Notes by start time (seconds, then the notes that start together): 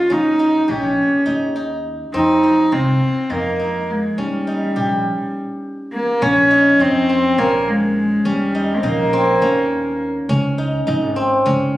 Already playing: D#4 F4 G4
0.10 D#2 C#4 D#4
0.39 D#4
0.68 A#1 C#4 G4
1.26 D#2 D#4
1.56 D#4
2.14 F2 C4 D#4
2.43 D#4
2.72 C2 C4 F4
3.30 F2 A#3 D#4
3.60 D#4
3.90 G#3
4.18 D#2 G3 C#4
4.47 D#4
4.76 A#1 G4
5.93 A#3
6.22 A#1 C#4
6.51 D#4
6.79 F2 C4 D#4
7.09 C4
7.38 A#1 A#3 C#4
7.68 G#3
8.25 D#2 G3 C#4
8.55 D#4
8.78 C4
8.83 A#1 A#3 D#4
9.13 C4
9.42 D#2 C#4
10.29 C#2 C#4
10.58 D#4
10.87 G#1 D#4
11.16 C4
11.46 C#2 C#4